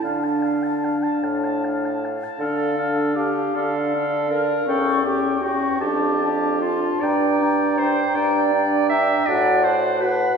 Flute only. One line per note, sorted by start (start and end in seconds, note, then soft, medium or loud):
0.00 2.03 A5 soft
2.40 2.77 A5 soft
2.78 3.16 A5 soft
3.17 3.55 A5 soft
3.57 3.94 A5 soft
3.96 4.31 A5 soft
4.31 4.67 A5 soft
4.67 5.04 C#6 soft
5.06 5.42 C#6 soft
5.43 5.80 C#6 soft
5.82 6.21 A5 soft
6.23 6.61 A5 soft
6.61 7.02 A5 soft
7.02 7.39 A#5 soft
7.40 7.77 A#5 soft
7.77 8.15 A#5 soft
8.16 8.52 A#5 soft
8.52 8.89 A#5 soft
8.89 9.27 A#5 soft
9.28 9.64 A5 medium
9.64 10.01 A5 soft
10.02 10.37 A5 soft